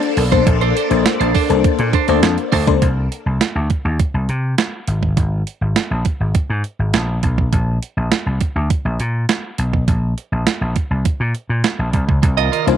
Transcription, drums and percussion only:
0.03 closed hi-hat soft
0.17 open hi-hat medium
0.32 kick medium
0.32 closed hi-hat medium
0.47 kick loud
0.47 closed hi-hat loud
0.61 closed hi-hat soft
0.77 closed hi-hat medium
0.91 closed hi-hat medium
1.06 snare loud
1.06 closed hi-hat medium
1.21 closed hi-hat medium
1.35 kick loud
1.35 open hi-hat medium
1.50 closed hi-hat medium
1.64 kick loud
1.64 closed hi-hat medium
1.79 closed hi-hat medium
1.93 kick medium
1.93 closed hi-hat medium
2.08 closed hi-hat medium
2.23 snare loud
2.23 closed hi-hat medium
2.38 closed hi-hat soft
2.52 kick medium
2.52 open hi-hat medium
2.67 kick loud
2.67 closed hi-hat medium
2.82 kick loud
2.82 closed hi-hat loud
3.12 closed hi-hat medium
3.41 snare medium
3.41 closed hi-hat medium
3.70 kick medium
3.70 closed hi-hat medium
4.00 kick loud
4.00 closed hi-hat medium
4.29 closed hi-hat medium
4.58 snare loud
4.58 closed hi-hat medium
4.88 closed hi-hat medium
5.03 kick medium
5.17 kick loud
5.17 closed hi-hat loud
5.47 closed hi-hat medium
5.76 snare medium
5.76 closed hi-hat medium
6.05 kick medium
6.05 closed hi-hat medium
6.35 kick loud
6.35 closed hi-hat medium
6.64 closed hi-hat medium
6.94 snare loud
6.94 closed hi-hat medium
7.23 kick medium
7.23 closed hi-hat medium
7.38 kick medium
7.53 kick medium
7.53 closed hi-hat loud
7.83 closed hi-hat medium
8.12 snare medium
8.12 closed hi-hat medium
8.41 kick medium
8.41 closed hi-hat medium
8.70 kick loud
8.70 closed hi-hat medium
9.00 closed hi-hat medium
9.29 snare loud
9.29 closed hi-hat medium
9.58 closed hi-hat medium
9.73 kick medium
9.88 kick loud
9.88 closed hi-hat medium
10.18 closed hi-hat medium
10.47 snare loud
10.47 closed hi-hat medium
10.76 kick medium
10.76 closed hi-hat medium
11.05 kick loud
11.05 closed hi-hat medium
11.35 closed hi-hat medium
11.64 snare medium
11.64 closed hi-hat medium
11.93 kick medium
11.93 closed hi-hat medium
12.09 kick medium
12.23 kick loud
12.23 closed hi-hat loud
12.38 closed hi-hat medium
12.53 closed hi-hat medium
12.68 closed hi-hat medium

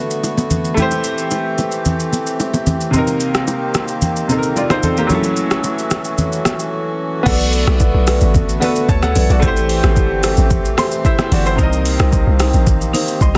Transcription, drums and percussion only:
0.11 shaker medium
0.23 high bongo medium
0.23 shaker medium
0.37 low bongo medium
0.37 shaker soft
0.51 low conga medium
0.51 shaker medium
0.65 shaker soft
0.77 low conga medium
0.77 shaker medium
0.91 high bongo medium
0.91 shaker medium
1.04 shaker medium
1.18 shaker soft
1.31 high bongo medium
1.31 shaker medium
1.58 high bongo soft
1.58 low bongo soft
1.58 shaker medium
1.72 shaker soft
1.85 low conga medium
1.85 shaker medium
2.00 shaker soft
2.13 low bongo medium
2.13 shaker medium
2.27 shaker medium
2.40 high bongo medium
2.40 shaker medium
2.54 low bongo medium
2.54 shaker soft
2.67 low conga medium
2.67 shaker medium
2.81 shaker soft
2.93 low conga medium
2.93 shaker medium
3.07 high bongo soft
3.07 shaker medium
3.20 shaker medium
3.34 cross-stick medium
3.34 shaker soft
3.47 high bongo medium
3.47 shaker medium
3.74 cross-stick medium
3.74 high bongo soft
3.74 low bongo soft
3.74 shaker medium
3.88 shaker medium
4.02 low conga medium
4.02 shaker medium
4.16 shaker soft
4.29 low bongo medium
4.29 shaker medium
4.43 shaker soft
4.56 high bongo medium
4.56 shaker medium
4.70 cross-stick medium
4.70 low bongo medium
4.70 shaker soft
4.83 low conga medium
4.83 shaker medium
4.97 shaker soft
5.10 low conga medium
5.10 shaker medium
5.24 high bongo medium
5.24 shaker medium
5.37 shaker medium
5.51 cross-stick medium
5.51 shaker soft
5.64 high bongo medium
5.64 shaker medium
5.79 shaker soft
5.91 cross-stick medium
5.91 high bongo soft
5.91 low bongo soft
5.91 shaker medium
6.04 shaker medium
6.18 low conga medium
6.18 shaker medium
6.32 shaker soft
6.45 cross-stick loud
6.45 low bongo medium
6.45 shaker medium
6.59 shaker medium
7.26 kick loud
7.26 crash loud
7.26 low conga medium
7.26 shaker medium
7.40 shaker medium
7.53 open hi-hat medium
7.53 shaker medium
7.67 cross-stick medium
7.67 low bongo medium
7.67 shaker soft
7.80 kick medium
7.80 high bongo medium
7.80 shaker medium
8.07 cross-stick medium
8.07 open hi-hat medium
8.07 high bongo soft
8.07 shaker medium
8.21 shaker medium
8.34 kick loud
8.34 low conga medium
8.34 shaker medium
8.49 shaker medium
8.62 open hi-hat medium
8.62 low bongo medium
8.62 shaker medium
8.76 shaker medium
8.89 kick medium
8.89 high bongo medium
8.89 shaker medium
9.03 cross-stick medium
9.03 low bongo medium
9.03 shaker medium
9.16 open hi-hat medium
9.16 low conga medium
9.16 shaker medium
9.30 shaker soft
9.42 kick loud
9.42 low conga medium
9.42 shaker medium
9.56 shaker medium
9.69 open hi-hat medium
9.69 shaker medium
9.83 cross-stick medium
9.83 low bongo medium
9.83 shaker soft
9.96 kick medium
9.96 high bongo medium
9.96 shaker medium
10.23 cross-stick medium
10.23 open hi-hat medium
10.23 high bongo soft
10.23 shaker medium
10.37 shaker medium
10.50 kick loud
10.50 low conga medium
10.50 shaker medium
10.65 shaker medium
10.78 cross-stick loud
10.78 open hi-hat medium
10.78 low bongo medium
10.78 shaker medium
10.92 shaker medium
11.05 kick medium
11.05 high bongo medium
11.05 shaker medium
11.18 cross-stick medium
11.18 low bongo medium
11.18 shaker medium
11.32 open hi-hat medium
11.32 low conga medium
11.32 shaker medium
11.46 shaker soft
11.58 kick loud
11.58 low conga medium
11.58 shaker medium
11.73 shaker medium
11.85 open hi-hat medium
11.85 shaker medium
11.99 cross-stick medium
11.99 low bongo medium
11.99 shaker soft
12.12 kick medium
12.12 high bongo medium
12.12 shaker medium
12.39 cross-stick medium
12.39 open hi-hat medium
12.39 high bongo medium
12.39 shaker loud
12.53 shaker medium
12.67 kick loud
12.67 low conga medium
12.67 shaker medium
12.81 shaker medium
12.94 open hi-hat medium
12.94 low bongo medium
12.94 shaker medium
13.08 shaker medium
13.21 kick medium
13.21 high bongo medium
13.21 shaker medium
13.35 low bongo medium

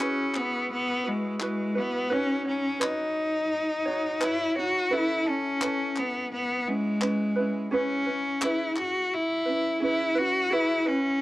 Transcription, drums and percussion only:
0.00 clap loud
0.34 clap medium
1.40 clap medium
2.82 clap loud
4.21 clap medium
5.62 clap loud
5.96 clap medium
7.01 clap medium
8.42 clap loud
8.76 clap medium

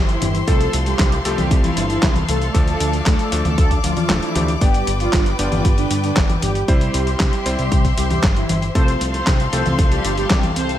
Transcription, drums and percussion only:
0.09 closed hi-hat soft
0.09 cabasa soft
0.22 closed hi-hat medium
0.22 high conga medium
0.22 cabasa medium
0.35 closed hi-hat soft
0.35 cabasa soft
0.48 kick loud
0.48 closed hi-hat medium
0.48 cabasa soft
0.61 closed hi-hat soft
0.61 cabasa soft
0.73 closed hi-hat medium
0.73 cabasa medium
0.86 closed hi-hat soft
0.86 cabasa soft
0.99 kick loud
0.99 snare loud
0.99 clap loud
0.99 closed hi-hat medium
0.99 cabasa soft
1.12 closed hi-hat soft
1.12 cabasa soft
1.25 closed hi-hat loud
1.25 cabasa medium
1.38 closed hi-hat soft
1.38 high conga medium
1.38 cabasa soft
1.51 kick loud
1.51 closed hi-hat medium
1.51 cabasa soft
1.64 closed hi-hat soft
1.64 cabasa soft
1.77 closed hi-hat medium
1.77 cabasa medium
1.90 closed hi-hat soft
1.90 cabasa soft
2.03 kick loud
2.03 snare loud
2.03 clap loud
2.03 closed hi-hat medium
2.03 cabasa soft
2.16 closed hi-hat soft
2.16 high conga medium
2.16 cabasa soft
2.29 closed hi-hat loud
2.29 cabasa medium
2.42 closed hi-hat soft
2.42 cabasa soft
2.54 kick loud
2.54 closed hi-hat medium
2.54 cabasa soft
2.67 closed hi-hat soft
2.67 cabasa soft
2.80 closed hi-hat loud
2.80 cabasa medium
2.93 closed hi-hat soft
2.93 cabasa soft
3.06 kick loud
3.06 snare loud
3.06 clap loud
3.06 closed hi-hat medium
3.06 cabasa soft
3.19 closed hi-hat soft
3.19 cabasa soft
3.32 closed hi-hat loud
3.32 cabasa medium
3.45 closed hi-hat soft
3.45 high conga medium
3.45 cabasa soft
3.58 kick loud
3.58 closed hi-hat medium
3.58 cabasa soft
3.71 kick medium
3.71 closed hi-hat soft
3.71 cabasa soft
3.84 closed hi-hat loud
3.84 cabasa medium
3.97 closed hi-hat soft
3.97 high conga medium
3.97 cabasa soft
4.10 snare loud
4.10 clap loud
4.10 closed hi-hat medium
4.10 cabasa soft
4.23 closed hi-hat soft
4.23 cabasa soft
4.35 closed hi-hat loud
4.35 high conga medium
4.35 cabasa medium
4.48 closed hi-hat soft
4.48 cabasa soft
4.61 kick loud
4.61 closed hi-hat medium
4.61 cabasa soft
4.74 closed hi-hat soft
4.74 cabasa soft
4.87 closed hi-hat medium
4.87 cabasa medium
5.00 closed hi-hat soft
5.00 cabasa soft
5.13 kick loud
5.13 snare loud
5.13 clap loud
5.13 closed hi-hat medium
5.13 cabasa soft
5.26 closed hi-hat soft
5.26 cabasa soft
5.39 closed hi-hat loud
5.39 cabasa medium
5.52 closed hi-hat soft
5.52 high conga medium
5.52 cabasa soft
5.65 kick loud
5.65 closed hi-hat medium
5.65 cabasa soft
5.78 closed hi-hat soft
5.78 cabasa soft
5.91 closed hi-hat loud
5.91 cabasa medium
6.04 closed hi-hat soft
6.04 cabasa soft
6.17 kick loud
6.17 snare loud
6.17 clap loud
6.17 closed hi-hat medium
6.17 cabasa soft
6.30 closed hi-hat soft
6.30 high conga medium
6.30 cabasa soft
6.42 closed hi-hat loud
6.42 cabasa medium
6.55 closed hi-hat soft
6.55 cabasa soft
6.68 kick loud
6.68 closed hi-hat medium
6.68 cabasa soft
6.81 closed hi-hat soft
6.81 cabasa soft
6.94 closed hi-hat medium
6.94 cabasa medium
7.07 closed hi-hat soft
7.07 cabasa soft
7.20 kick loud
7.20 snare loud
7.20 clap loud
7.20 closed hi-hat medium
7.20 cabasa soft
7.33 closed hi-hat soft
7.33 cabasa soft
7.46 closed hi-hat medium
7.46 cabasa medium
7.59 closed hi-hat soft
7.59 cabasa soft
7.72 kick loud
7.72 closed hi-hat medium
7.72 cabasa soft
7.85 kick medium
7.85 closed hi-hat soft
7.85 cabasa soft
7.98 closed hi-hat medium
7.98 cabasa medium
8.10 closed hi-hat soft
8.10 high conga medium
8.10 cabasa soft
8.23 kick loud
8.23 snare loud
8.23 clap loud
8.23 closed hi-hat medium
8.23 cabasa soft
8.36 closed hi-hat soft
8.36 cabasa soft
8.49 closed hi-hat medium
8.49 high conga medium
8.49 cabasa medium
8.62 closed hi-hat soft
8.62 cabasa soft
8.75 kick loud
8.75 closed hi-hat medium
8.75 cabasa soft
8.88 closed hi-hat soft
8.88 cabasa soft
9.01 closed hi-hat medium
9.01 cabasa medium
9.14 closed hi-hat soft
9.14 cabasa soft
9.27 kick loud
9.27 snare loud
9.27 clap loud
9.27 closed hi-hat medium
9.27 cabasa soft
9.40 closed hi-hat soft
9.40 cabasa soft
9.53 closed hi-hat medium
9.53 cabasa medium
9.66 closed hi-hat soft
9.66 high conga medium
9.66 cabasa soft
9.79 kick loud
9.79 closed hi-hat medium
9.79 cabasa soft
9.92 closed hi-hat soft
9.92 cabasa soft
10.05 closed hi-hat medium
10.05 cabasa medium
10.17 closed hi-hat soft
10.17 cabasa soft
10.30 kick loud
10.30 snare loud
10.30 clap loud
10.30 closed hi-hat medium
10.30 cabasa soft
10.43 closed hi-hat soft
10.43 high conga medium
10.43 cabasa soft
10.56 closed hi-hat medium
10.56 cabasa medium
10.69 closed hi-hat soft
10.69 cabasa soft

